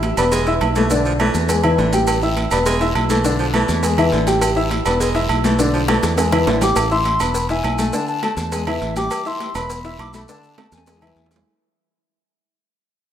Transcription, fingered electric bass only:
0.00 0.12 A1 medium
0.17 0.58 E1 medium
0.61 1.29 B1 medium
1.34 1.75 E2 medium
1.78 2.46 A1 medium
2.52 2.92 E1 medium
2.95 3.63 B1 medium
3.69 4.10 E2 medium
4.12 4.80 A1 loud
4.86 5.27 E1 medium
5.30 5.98 B1 medium
6.03 6.44 E2 medium
6.47 6.73 A1 medium
6.76 7.17 A1 medium
7.21 7.61 E1 medium
7.64 7.90 B1 medium
8.37 8.78 E2 medium
8.82 9.08 A1 medium
9.55 9.96 E1 loud
9.99 10.25 B1 loud
10.72 11.13 E2 loud
11.16 11.42 E2 medium

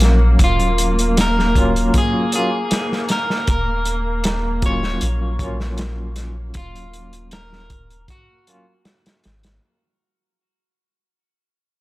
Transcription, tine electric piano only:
0.00 1.50 F#3 medium
0.00 1.51 A#3 medium
0.00 1.52 C#4 medium
0.00 1.52 F5 medium
1.56 2.28 F#3 loud
1.56 2.29 A#3 medium
1.56 2.29 C#4 medium
1.56 2.29 F4 loud
2.33 2.57 F#3 medium
2.33 2.57 A#3 medium
2.33 2.57 C#4 medium
2.33 2.58 F4 loud
4.64 5.36 F#3 medium
4.64 5.36 A#3 medium
4.64 5.37 C#4 medium
4.64 5.37 F4 medium
5.40 7.66 F#3 medium
5.40 7.67 A#3 medium
5.40 7.68 C#4 medium
5.44 7.69 F4 medium
8.47 8.72 F#3 loud
8.47 8.72 A#3 medium
8.47 8.72 C#4 medium
8.47 8.73 F4 loud

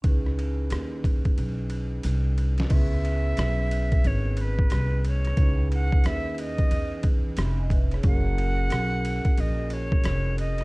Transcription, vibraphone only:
0.02 2.66 C#4 medium
0.02 2.66 D#4 medium
0.02 2.67 E4 medium
0.02 2.67 G#4 soft
0.02 2.68 B4 medium
2.69 5.33 B3 medium
2.69 5.33 C#4 medium
2.69 5.33 E4 medium
2.69 5.34 G#4 medium
2.69 5.34 B4 medium
5.37 8.00 C#4 medium
5.37 8.00 D#4 medium
5.37 8.00 E4 medium
5.37 7.34 G#4 medium
5.37 7.35 B4 medium
7.38 7.58 E5 soft
7.38 7.58 B5 medium
7.59 7.71 D#5 medium
7.59 7.70 G#5 medium
7.71 7.91 B4 medium
7.71 7.91 E5 medium
7.92 8.04 G#4 medium
7.92 8.24 C#5 medium
8.02 10.64 C#4 medium
8.02 10.64 E4 medium
8.02 10.64 F#4 medium
8.02 10.64 G#4 medium
8.02 10.64 A#4 medium

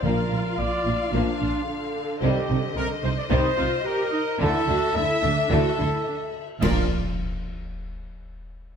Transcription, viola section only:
0.05 1.11 F4 medium
1.13 1.68 D4 medium
1.69 3.28 D3 medium
3.31 3.57 D#4 medium
3.58 3.85 F4 medium
3.85 4.12 G4 medium
4.12 4.20 D#4 medium
4.41 4.67 E4 medium
4.68 4.95 F#4 medium
4.96 5.22 E4 medium
5.22 5.50 D4 medium
5.50 5.78 F#4 medium
5.79 6.07 E4 medium
6.07 6.15 D4 medium
6.63 6.93 F4 medium

